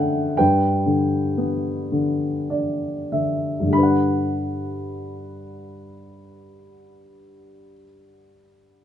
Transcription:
0.00 0.35 F#2 medium
0.00 0.41 D3 medium
0.00 0.35 F#3 medium
0.00 0.37 A3 soft
0.00 0.41 D5 medium
0.00 0.41 E5 medium
0.00 0.41 F#5 medium
0.00 0.37 G5 medium
0.37 3.59 G2 soft
0.37 3.07 B4 medium
0.37 3.06 G5 medium
0.86 1.90 D3 soft
1.38 3.68 B3 soft
1.92 3.10 D3 soft
2.50 3.67 D4 soft
2.50 3.07 D5 soft
3.12 3.64 D3 soft
3.12 3.68 E5 soft
3.60 7.71 G2 soft
3.65 7.76 D3 soft
3.69 7.80 G3 soft
3.69 7.83 B5 medium
3.74 7.84 D4 soft
3.78 7.89 B4 soft
3.83 7.94 F#5 soft

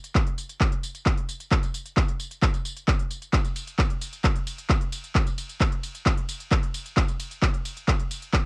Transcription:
0.04 closed hi-hat medium
0.04 tambourine soft
0.15 kick loud
0.15 clap loud
0.15 closed hi-hat medium
0.15 tambourine soft
0.27 closed hi-hat medium
0.38 open hi-hat loud
0.38 tambourine medium
0.49 closed hi-hat medium
0.49 tambourine soft
0.61 kick loud
0.61 clap loud
0.61 closed hi-hat medium
0.61 tambourine soft
0.72 closed hi-hat medium
0.83 open hi-hat loud
0.83 tambourine medium
0.95 closed hi-hat medium
0.95 tambourine soft
1.06 kick loud
1.06 clap loud
1.06 closed hi-hat medium
1.06 tambourine soft
1.17 closed hi-hat medium
1.29 open hi-hat loud
1.29 tambourine medium
1.40 closed hi-hat medium
1.40 tambourine soft
1.51 kick loud
1.51 clap loud
1.51 closed hi-hat medium
1.51 tambourine soft
1.63 closed hi-hat medium
1.63 tambourine soft
1.74 open hi-hat loud
1.74 tambourine medium
1.86 closed hi-hat medium
1.86 tambourine soft
1.97 kick loud
1.97 clap loud
1.97 closed hi-hat medium
1.97 tambourine soft
2.08 closed hi-hat medium
2.20 open hi-hat loud
2.20 tambourine medium
2.31 closed hi-hat medium
2.31 tambourine soft
2.42 kick loud
2.42 clap loud
2.42 closed hi-hat medium
2.42 tambourine soft
2.54 closed hi-hat medium
2.54 tambourine soft
2.65 open hi-hat loud
2.65 tambourine medium
2.76 closed hi-hat medium
2.76 tambourine soft
2.88 kick loud
2.88 clap loud
2.88 closed hi-hat medium
2.88 tambourine soft
2.99 closed hi-hat medium
3.11 open hi-hat loud
3.11 tambourine medium
3.22 closed hi-hat medium
3.22 tambourine soft
3.33 kick loud
3.33 clap loud
3.33 closed hi-hat medium
3.33 ride medium
3.33 tambourine soft
3.45 closed hi-hat medium
3.45 tambourine soft
3.56 open hi-hat loud
3.56 ride medium
3.56 tambourine medium
3.67 closed hi-hat medium
3.67 tambourine soft
3.79 kick loud
3.79 clap loud
3.79 closed hi-hat medium
3.79 ride medium
3.79 tambourine soft
3.90 closed hi-hat medium
4.01 open hi-hat loud
4.01 ride medium
4.01 tambourine medium
4.13 closed hi-hat medium
4.13 tambourine soft
4.24 kick loud
4.24 clap loud
4.24 closed hi-hat medium
4.24 ride medium
4.24 tambourine soft
4.36 closed hi-hat medium
4.47 open hi-hat loud
4.47 ride medium
4.47 tambourine medium
4.58 closed hi-hat medium
4.58 tambourine soft
4.70 kick loud
4.70 clap loud
4.70 closed hi-hat medium
4.70 ride medium
4.70 tambourine soft
4.81 closed hi-hat medium
4.92 open hi-hat loud
4.92 ride medium
4.92 tambourine medium
5.04 closed hi-hat medium
5.04 tambourine soft
5.15 kick loud
5.15 clap loud
5.15 closed hi-hat medium
5.15 ride medium
5.15 tambourine soft
5.27 closed hi-hat medium
5.27 tambourine soft
5.38 open hi-hat loud
5.38 ride medium
5.38 tambourine medium
5.49 closed hi-hat medium
5.49 tambourine soft
5.61 kick loud
5.61 clap loud
5.61 closed hi-hat medium
5.61 ride medium
5.61 tambourine soft
5.72 closed hi-hat medium
5.83 open hi-hat loud
5.83 ride medium
5.83 tambourine medium
5.95 closed hi-hat medium
5.95 tambourine soft
6.06 kick loud
6.06 clap loud
6.06 closed hi-hat medium
6.06 ride medium
6.06 tambourine soft
6.17 closed hi-hat medium
6.29 open hi-hat loud
6.29 ride medium
6.29 tambourine medium
6.40 closed hi-hat medium
6.40 tambourine soft
6.51 kick loud
6.51 clap loud
6.51 closed hi-hat medium
6.51 ride medium
6.51 tambourine soft
6.63 closed hi-hat medium
6.74 open hi-hat loud
6.74 ride medium
6.74 tambourine medium
6.86 closed hi-hat medium
6.86 tambourine soft
6.97 kick loud
6.97 clap loud
6.97 closed hi-hat medium
6.97 ride medium
6.97 tambourine soft
7.08 closed hi-hat medium
7.08 tambourine soft
7.20 open hi-hat loud
7.20 ride medium
7.20 tambourine medium
7.31 closed hi-hat medium
7.31 tambourine soft
7.42 kick loud
7.42 clap loud
7.42 closed hi-hat medium
7.42 ride medium
7.42 tambourine soft
7.54 closed hi-hat medium
7.65 open hi-hat loud
7.65 ride medium
7.65 tambourine medium
7.77 closed hi-hat medium
7.77 tambourine soft
7.88 kick loud
7.88 clap loud
7.88 closed hi-hat medium
7.88 ride medium
7.88 tambourine soft
7.99 closed hi-hat medium
8.11 open hi-hat loud
8.11 ride medium
8.11 tambourine medium
8.22 closed hi-hat medium
8.22 tambourine soft
8.33 kick loud
8.33 clap loud
8.33 closed hi-hat medium
8.33 ride medium
8.33 tambourine soft

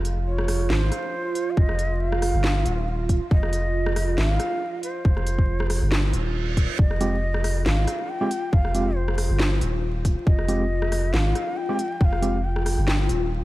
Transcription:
0.00 0.69 F1 loud
0.00 6.78 F4 medium
0.05 closed hi-hat medium
0.27 0.71 C#5 medium
0.39 cross-stick medium
0.48 cross-stick medium
0.48 open hi-hat medium
0.70 0.90 G#1 medium
0.70 1.52 C5 loud
0.70 snare loud
0.92 cross-stick medium
0.92 closed hi-hat medium
1.35 closed hi-hat medium
1.51 1.58 F5 medium
1.57 2.33 F1 loud
1.57 2.02 D#5 loud
1.57 kick loud
1.69 cross-stick medium
1.79 closed hi-hat medium
2.00 2.13 E5 loud
2.12 3.09 F5 loud
2.12 cross-stick medium
2.22 cross-stick medium
2.22 open hi-hat loud
2.34 2.65 G1 medium
2.44 snare loud
2.66 3.20 D#1 medium
2.66 closed hi-hat medium
3.09 kick medium
3.09 closed hi-hat medium
3.31 4.17 F1 loud
3.31 4.20 D#5 loud
3.31 kick loud
3.43 cross-stick medium
3.53 closed hi-hat medium
3.86 cross-stick medium
3.96 cross-stick medium
3.96 open hi-hat loud
4.18 4.38 G#1 medium
4.18 4.30 E5 loud
4.18 snare loud
4.30 4.83 F5 loud
4.40 cross-stick medium
4.40 closed hi-hat medium
4.83 6.31 C5 loud
4.83 closed hi-hat medium
5.05 5.80 F1 loud
5.05 kick loud
5.17 cross-stick medium
5.27 closed hi-hat medium
5.39 kick medium
5.60 cross-stick medium
5.70 cross-stick medium
5.70 open hi-hat medium
5.82 6.13 G1 medium
5.92 snare loud
5.92 reverse cymbal medium
6.13 6.67 D#1 medium
6.13 closed hi-hat medium
6.57 kick medium
6.57 closed hi-hat medium
6.79 7.65 F1 loud
6.79 13.44 F4 medium
6.79 7.62 D#5 loud
6.79 kick loud
6.91 cross-stick medium
7.01 7.15 G#3 medium
7.01 7.16 C4 medium
7.01 7.16 F4 medium
7.01 7.15 G4 medium
7.01 closed hi-hat medium
7.34 cross-stick medium
7.44 cross-stick medium
7.44 open hi-hat loud
7.66 7.86 G#1 medium
7.66 8.11 F5 loud
7.66 snare loud
7.88 cross-stick medium
7.88 closed hi-hat medium
8.10 8.54 G5 loud
8.21 8.29 G#3 medium
8.21 8.29 C4 medium
8.21 8.29 F4 medium
8.21 8.29 G4 medium
8.31 closed hi-hat medium
8.53 9.28 F1 loud
8.53 8.98 F5 loud
8.53 kick loud
8.65 cross-stick medium
8.75 8.89 G#3 medium
8.75 8.89 C4 medium
8.75 8.89 F4 medium
8.75 8.89 G4 medium
8.75 closed hi-hat medium
8.96 9.83 C5 medium
9.08 cross-stick medium
9.18 cross-stick medium
9.18 open hi-hat medium
9.30 9.61 G1 medium
9.40 snare loud
9.61 10.15 D#1 medium
9.61 closed hi-hat medium
10.05 kick medium
10.05 closed hi-hat medium
10.26 11.12 F1 loud
10.26 11.15 D#5 loud
10.26 kick loud
10.39 cross-stick medium
10.48 10.63 G#3 medium
10.48 10.63 C4 medium
10.48 10.63 F4 medium
10.48 10.63 G4 medium
10.48 closed hi-hat medium
10.82 cross-stick medium
10.92 cross-stick medium
10.92 open hi-hat medium
11.13 11.34 G#1 medium
11.13 11.58 F5 loud
11.13 snare loud
11.35 cross-stick medium
11.35 closed hi-hat medium
11.57 12.01 G5 loud
11.69 11.77 G#3 medium
11.69 11.77 C4 medium
11.69 11.77 F4 medium
11.69 11.77 G4 loud
11.79 closed hi-hat medium
12.01 12.76 F1 loud
12.01 12.06 G5 loud
12.01 kick loud
12.05 12.45 F5 loud
12.13 cross-stick medium
12.22 12.37 G#3 medium
12.22 12.37 C4 medium
12.22 12.37 F4 medium
12.22 12.37 G4 medium
12.22 closed hi-hat medium
12.44 13.31 G5 medium
12.56 cross-stick medium
12.66 cross-stick medium
12.66 open hi-hat medium
12.78 13.09 G1 loud
12.88 snare loud
13.09 13.44 D#1 medium
13.09 closed hi-hat medium

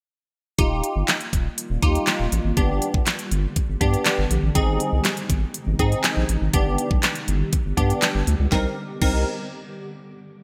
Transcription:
0.58 0.82 D#1 loud
0.58 2.55 D#3 medium
0.58 4.51 G3 medium
0.58 2.55 A#3 medium
0.58 1.18 D#4 medium
0.58 2.55 F4 medium
0.58 1.18 F4 medium
0.58 1.18 G4 medium
0.58 kick loud
0.58 closed hi-hat loud
0.84 closed hi-hat medium
0.96 1.03 G1 medium
1.08 snare medium
1.08 clap loud
1.08 closed hi-hat medium
1.21 closed hi-hat medium
1.33 1.48 D#1 medium
1.33 kick medium
1.33 closed hi-hat medium
1.58 closed hi-hat medium
1.70 1.78 D#1 loud
1.82 1.98 D#2 medium
1.82 2.27 D#4 medium
1.82 2.27 F4 medium
1.82 2.27 G4 loud
1.82 kick medium
1.82 closed hi-hat medium
1.95 closed hi-hat soft
2.07 snare medium
2.07 clap loud
2.07 closed hi-hat medium
2.20 2.27 D#1 medium
2.32 2.40 A1 loud
2.32 closed hi-hat medium
2.45 2.52 G#1 medium
2.57 2.80 G1 loud
2.57 4.53 D3 medium
2.57 3.16 B3 medium
2.57 4.53 B3 medium
2.57 3.16 D4 medium
2.57 4.53 G4 medium
2.57 3.16 G4 medium
2.57 kick loud
2.57 closed hi-hat loud
2.82 closed hi-hat medium
2.94 3.02 B1 medium
2.94 kick medium
3.06 snare medium
3.06 clap loud
3.06 closed hi-hat medium
3.19 closed hi-hat medium
3.31 3.47 G1 loud
3.31 closed hi-hat medium
3.56 kick medium
3.56 closed hi-hat medium
3.69 3.76 G1 loud
3.81 3.96 G2 loud
3.81 4.25 B3 medium
3.81 4.25 D4 medium
3.81 4.25 G4 loud
3.81 kick medium
3.81 closed hi-hat medium
3.94 closed hi-hat soft
4.06 snare medium
4.06 clap loud
4.06 closed hi-hat loud
4.18 4.26 G1 medium
4.31 4.38 A#1 loud
4.31 closed hi-hat medium
4.43 4.51 A1 medium
4.55 4.78 G#1 loud
4.55 6.52 C3 medium
4.55 6.52 D#3 medium
4.55 6.52 G#3 medium
4.55 5.14 C4 medium
4.55 5.14 D#4 medium
4.55 6.52 D#4 medium
4.55 5.14 G#4 loud
4.55 kick loud
4.55 closed hi-hat loud
4.80 closed hi-hat medium
4.93 5.00 C2 medium
5.05 snare loud
5.05 clap loud
5.05 closed hi-hat medium
5.17 closed hi-hat medium
5.30 5.45 G#1 medium
5.30 kick medium
5.30 closed hi-hat medium
5.54 closed hi-hat loud
5.67 5.75 G#1 loud
5.79 5.95 G#2 loud
5.79 6.24 C4 medium
5.79 6.24 D#4 medium
5.79 6.24 G#4 loud
5.79 kick medium
5.79 closed hi-hat medium
5.92 closed hi-hat soft
6.04 snare medium
6.04 clap loud
6.04 closed hi-hat medium
6.17 6.24 A#1 medium
6.29 6.37 A1 loud
6.29 closed hi-hat medium
6.42 6.49 G#1 medium
6.53 6.77 G1 loud
6.53 8.50 D3 medium
6.53 8.50 G3 medium
6.53 7.13 B3 medium
6.53 8.50 B3 medium
6.53 7.13 D4 medium
6.53 8.50 G4 medium
6.53 7.13 G4 medium
6.53 kick loud
6.53 closed hi-hat loud
6.78 closed hi-hat medium
6.91 6.98 B1 medium
6.91 kick loud
7.03 snare medium
7.03 clap loud
7.03 closed hi-hat medium
7.15 closed hi-hat medium
7.28 7.44 G1 loud
7.28 closed hi-hat medium
7.53 kick loud
7.53 closed hi-hat medium
7.65 7.73 G1 loud
7.77 7.93 G2 loud
7.77 8.22 B3 medium
7.77 8.22 D4 medium
7.77 8.22 G4 medium
7.77 kick medium
7.77 closed hi-hat medium
7.90 closed hi-hat soft
8.02 snare medium
8.02 clap loud
8.02 closed hi-hat loud
8.15 8.23 G1 medium
8.27 8.35 D2 loud
8.27 closed hi-hat medium
8.40 8.47 C#2 medium
8.52 8.66 C2 medium
8.52 8.66 C4 medium
8.52 8.66 D#4 medium
8.52 8.66 A#4 medium
8.52 kick loud
8.52 snare medium
9.02 9.25 C2 loud
9.02 9.25 C4 medium
9.02 9.25 D#4 medium
9.02 9.25 A#4 medium
9.02 kick loud
9.02 crash medium

